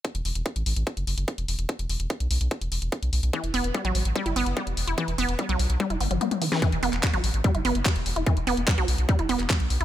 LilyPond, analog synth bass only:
\new Staff \with { instrumentName = "Analog synth bass" } { \clef bass \time 4/4 \key e \minor \tempo 4 = 146 r16 e,,16 e,,16 e,,16 r16 a,,16 a,,16 a,,16 r16 fis,,16 fis,,16 fis,,16 r16 e,,16 e,,16 e,,16 | r16 e,,16 e,,16 e,,16 r16 b,,16 b,,16 b,,16 r16 e,,16 e,,16 e,,16 r16 b,,16 b,,16 b,,16 | r16 e,,16 e,,16 e,,16 r16 a,,16 a,,16 a,,16 r16 fis,,16 fis,,16 fis,,16 r16 e,,16 e,,16 e,,16 | r16 e,,16 e,,16 e,,16 r16 b,,16 b,,16 b,,16 r16 e,,16 g,,16 g,,16 r4 |
r16 e,,16 e,,16 e,,16 r16 a,,16 a,,16 a,,16 r16 fis,,16 fis,,16 fis,,16 r16 e,,16 e,,16 e,,16 | r16 e,,16 e,,16 e,,16 r16 b,,16 b,,16 b,,16 r16 e,,16 e,,16 e,,16 r16 b,,16 b,,16 b,,16 | }